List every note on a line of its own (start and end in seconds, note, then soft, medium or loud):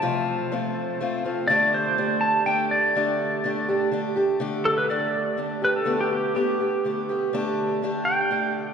0.00 0.51 F2 medium
0.00 0.51 C3 medium
0.00 0.51 F3 medium
0.00 0.52 A3 medium
0.00 0.52 C4 medium
0.00 0.52 F4 medium
0.00 1.20 A5 loud
0.52 0.99 F3 medium
0.52 1.01 A3 medium
0.52 1.01 C4 medium
0.52 1.01 F4 medium
1.00 1.25 F3 medium
1.00 1.25 A3 medium
1.00 1.24 C4 medium
1.00 1.24 F4 medium
1.25 1.49 F3 medium
1.25 1.49 A3 medium
1.25 1.49 C4 medium
1.25 1.49 F4 medium
1.48 1.97 D3 medium
1.48 1.98 A3 medium
1.48 1.98 D4 medium
1.48 1.98 G4 medium
1.48 1.73 D5 loud
1.74 2.24 C5 loud
1.98 2.45 D3 medium
1.98 2.46 A3 medium
1.98 2.46 D4 medium
1.98 2.47 G4 medium
2.21 2.46 A5 loud
2.46 2.95 D3 medium
2.46 2.96 A3 medium
2.46 2.96 D4 medium
2.46 2.96 G4 medium
2.46 2.71 G5 loud
2.71 3.88 D5 loud
2.95 3.43 D3 medium
2.95 3.44 A3 medium
2.95 3.44 D4 medium
2.95 3.45 G4 medium
3.44 3.68 D3 medium
3.44 3.69 A3 medium
3.44 3.68 D4 medium
3.44 3.67 G4 medium
3.68 3.91 A3 soft
3.68 3.92 D4 medium
3.68 3.92 G4 medium
3.91 4.16 D3 medium
3.91 4.17 A3 medium
3.91 4.16 D4 medium
3.91 4.15 G4 medium
4.16 4.39 A3 medium
4.16 4.39 D4 medium
4.16 4.40 G4 medium
4.40 4.89 D3 medium
4.40 4.90 A3 medium
4.40 4.90 D4 medium
4.40 4.91 G4 loud
4.65 4.77 A4 medium
4.78 4.89 B4 medium
4.89 5.37 D3 medium
4.89 5.37 A3 medium
4.89 5.38 D4 medium
4.89 5.39 G4 medium
4.89 5.60 D5 medium
5.37 5.62 D3 medium
5.37 5.62 A3 medium
5.37 5.62 D4 medium
5.37 5.60 G4 medium
5.62 5.85 A3 soft
5.62 5.86 D4 soft
5.62 5.86 G4 soft
5.62 5.75 B4 medium
5.76 5.99 A4 medium
5.85 6.34 D3 medium
5.85 6.36 A3 medium
5.85 6.35 B3 medium
5.85 6.37 G4 medium
6.01 6.12 G4 medium
6.13 6.35 G4 medium
6.35 6.59 D3 medium
6.35 6.60 A3 medium
6.35 6.60 B3 medium
6.35 7.78 G4 medium
6.35 6.59 G4 medium
6.60 6.84 A3 soft
6.60 6.85 B3 soft
6.60 6.84 G4 soft
6.85 7.09 D3 medium
6.85 7.09 A3 medium
6.85 7.09 B3 medium
6.85 7.08 G4 medium
7.09 7.33 A3 soft
7.09 7.34 B3 medium
7.09 7.33 G4 medium
7.33 7.82 D3 medium
7.33 7.83 A3 medium
7.33 7.83 D4 medium
7.33 7.84 G4 loud
7.82 8.30 D3 medium
7.82 8.30 A3 medium
7.82 8.31 D4 medium
7.82 8.32 G4 medium
8.05 8.74 G5 medium
8.31 8.74 D3 medium
8.31 8.74 A3 medium
8.31 8.74 D4 medium
8.31 8.74 G4 medium